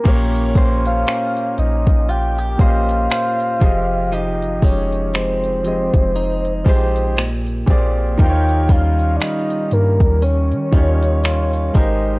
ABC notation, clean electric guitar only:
X:1
M:4/4
L:1/16
Q:"Swing 16ths" 1/4=59
K:Bbdor
V:1 name="Clean electric guitar"
B,2 [DGc]2 D4 F G [DGc]2 c2 F,2 | [F,G]2 [A,EG]2 A,4 E2 [A,EG]2 B,,4 | [E,F]2 [G,DF]2 G,4 D2 [G,DF]2 F2 A,2 |]